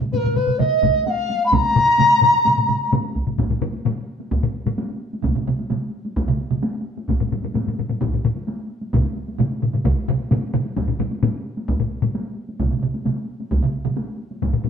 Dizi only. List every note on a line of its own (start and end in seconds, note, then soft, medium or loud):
0.12 0.18 B4 medium
0.17 0.37 A#4 medium
0.36 0.60 B4 medium
0.58 1.05 D#5 medium
1.06 1.43 F5 medium
1.06 1.10 F#5 medium
1.45 1.55 B5 medium
1.53 2.92 A#5 loud